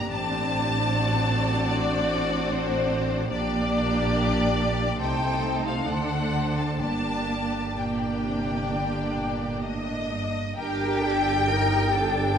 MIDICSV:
0, 0, Header, 1, 6, 480
1, 0, Start_track
1, 0, Key_signature, -2, "minor"
1, 0, Tempo, 804290
1, 58, Time_signature, 4, 2, 24, 8
1, 2457, Tempo, 879765
1, 3417, Tempo, 941915
1, 5817, Tempo, 902256
1, 6771, End_track
2, 0, Start_track
2, 0, Title_t, "Violin section"
2, 0, Program_c, 0, 48
2, 62, Note_on_c, 0, 81, 88
2, 1006, Note_off_c, 0, 81, 0
2, 1025, Note_on_c, 0, 74, 80
2, 1506, Note_on_c, 0, 72, 78
2, 1507, Note_off_c, 0, 74, 0
2, 1977, Note_off_c, 0, 72, 0
2, 1979, Note_on_c, 0, 74, 81
2, 2927, Note_off_c, 0, 74, 0
2, 2952, Note_on_c, 0, 79, 73
2, 3301, Note_off_c, 0, 79, 0
2, 3302, Note_on_c, 0, 77, 59
2, 3418, Note_off_c, 0, 77, 0
2, 3421, Note_on_c, 0, 78, 65
2, 3771, Note_off_c, 0, 78, 0
2, 3776, Note_on_c, 0, 81, 53
2, 3891, Note_off_c, 0, 81, 0
2, 3897, Note_on_c, 0, 81, 67
2, 4381, Note_off_c, 0, 81, 0
2, 4390, Note_on_c, 0, 79, 47
2, 5342, Note_off_c, 0, 79, 0
2, 5342, Note_on_c, 0, 75, 62
2, 5796, Note_off_c, 0, 75, 0
2, 5821, Note_on_c, 0, 79, 91
2, 6771, Note_off_c, 0, 79, 0
2, 6771, End_track
3, 0, Start_track
3, 0, Title_t, "Violin section"
3, 0, Program_c, 1, 48
3, 0, Note_on_c, 1, 67, 43
3, 60, Note_on_c, 1, 74, 56
3, 515, Note_off_c, 1, 67, 0
3, 546, Note_on_c, 1, 66, 59
3, 1954, Note_off_c, 1, 74, 0
3, 1964, Note_on_c, 1, 67, 60
3, 1967, Note_on_c, 1, 74, 55
3, 1977, Note_off_c, 1, 66, 0
3, 2916, Note_off_c, 1, 67, 0
3, 2918, Note_off_c, 1, 74, 0
3, 2944, Note_on_c, 1, 69, 55
3, 2944, Note_on_c, 1, 72, 48
3, 3409, Note_off_c, 1, 69, 0
3, 3414, Note_off_c, 1, 72, 0
3, 3415, Note_on_c, 1, 69, 44
3, 3420, Note_on_c, 1, 72, 44
3, 3882, Note_off_c, 1, 69, 0
3, 3884, Note_off_c, 1, 72, 0
3, 3888, Note_on_c, 1, 74, 37
3, 3889, Note_on_c, 1, 67, 39
3, 4375, Note_off_c, 1, 67, 0
3, 4375, Note_off_c, 1, 74, 0
3, 4381, Note_on_c, 1, 67, 42
3, 4381, Note_on_c, 1, 74, 41
3, 5319, Note_off_c, 1, 67, 0
3, 5319, Note_off_c, 1, 74, 0
3, 5329, Note_on_c, 1, 75, 52
3, 5789, Note_off_c, 1, 75, 0
3, 5807, Note_on_c, 1, 79, 76
3, 6771, Note_off_c, 1, 79, 0
3, 6771, End_track
4, 0, Start_track
4, 0, Title_t, "Viola section"
4, 0, Program_c, 2, 48
4, 62, Note_on_c, 2, 60, 55
4, 63, Note_on_c, 2, 62, 53
4, 1955, Note_off_c, 2, 60, 0
4, 1955, Note_off_c, 2, 62, 0
4, 1971, Note_on_c, 2, 58, 56
4, 1975, Note_on_c, 2, 62, 60
4, 2920, Note_off_c, 2, 58, 0
4, 2921, Note_off_c, 2, 62, 0
4, 2945, Note_on_c, 2, 63, 49
4, 2946, Note_on_c, 2, 57, 50
4, 3409, Note_off_c, 2, 57, 0
4, 3409, Note_off_c, 2, 63, 0
4, 3418, Note_on_c, 2, 57, 46
4, 3419, Note_on_c, 2, 62, 45
4, 3883, Note_off_c, 2, 57, 0
4, 3887, Note_off_c, 2, 62, 0
4, 3893, Note_on_c, 2, 62, 40
4, 3897, Note_on_c, 2, 58, 39
4, 4379, Note_off_c, 2, 62, 0
4, 4381, Note_off_c, 2, 58, 0
4, 4390, Note_on_c, 2, 62, 41
4, 4391, Note_on_c, 2, 58, 39
4, 5688, Note_off_c, 2, 58, 0
4, 5688, Note_off_c, 2, 62, 0
4, 5816, Note_on_c, 2, 70, 57
4, 5818, Note_on_c, 2, 62, 57
4, 6035, Note_off_c, 2, 70, 0
4, 6051, Note_on_c, 2, 69, 55
4, 6267, Note_off_c, 2, 62, 0
4, 6285, Note_on_c, 2, 63, 59
4, 6287, Note_off_c, 2, 69, 0
4, 6287, Note_on_c, 2, 67, 58
4, 6530, Note_off_c, 2, 63, 0
4, 6535, Note_on_c, 2, 62, 66
4, 6771, Note_off_c, 2, 62, 0
4, 6771, Note_off_c, 2, 67, 0
4, 6771, End_track
5, 0, Start_track
5, 0, Title_t, "Cello section"
5, 0, Program_c, 3, 48
5, 55, Note_on_c, 3, 45, 52
5, 1951, Note_off_c, 3, 45, 0
5, 1978, Note_on_c, 3, 46, 58
5, 2923, Note_off_c, 3, 46, 0
5, 2940, Note_on_c, 3, 48, 47
5, 3406, Note_off_c, 3, 48, 0
5, 3414, Note_on_c, 3, 50, 48
5, 3889, Note_on_c, 3, 43, 39
5, 3890, Note_off_c, 3, 50, 0
5, 4339, Note_off_c, 3, 43, 0
5, 4385, Note_on_c, 3, 46, 46
5, 4610, Note_off_c, 3, 46, 0
5, 4628, Note_on_c, 3, 48, 43
5, 4863, Note_off_c, 3, 48, 0
5, 4864, Note_on_c, 3, 50, 47
5, 5103, Note_off_c, 3, 50, 0
5, 5103, Note_on_c, 3, 46, 42
5, 5338, Note_on_c, 3, 45, 44
5, 5340, Note_off_c, 3, 46, 0
5, 5580, Note_off_c, 3, 45, 0
5, 5581, Note_on_c, 3, 43, 38
5, 5816, Note_off_c, 3, 43, 0
5, 5818, Note_on_c, 3, 67, 63
5, 6267, Note_off_c, 3, 67, 0
5, 6285, Note_on_c, 3, 70, 66
5, 6529, Note_on_c, 3, 69, 62
5, 6530, Note_off_c, 3, 70, 0
5, 6771, Note_off_c, 3, 69, 0
5, 6771, End_track
6, 0, Start_track
6, 0, Title_t, "Double bass section"
6, 0, Program_c, 4, 48
6, 61, Note_on_c, 4, 33, 56
6, 1954, Note_off_c, 4, 33, 0
6, 1977, Note_on_c, 4, 34, 62
6, 2922, Note_off_c, 4, 34, 0
6, 2943, Note_on_c, 4, 36, 46
6, 3407, Note_off_c, 4, 36, 0
6, 3414, Note_on_c, 4, 38, 48
6, 3887, Note_on_c, 4, 31, 43
6, 3890, Note_off_c, 4, 38, 0
6, 5705, Note_off_c, 4, 31, 0
6, 5819, Note_on_c, 4, 31, 66
6, 6771, Note_off_c, 4, 31, 0
6, 6771, End_track
0, 0, End_of_file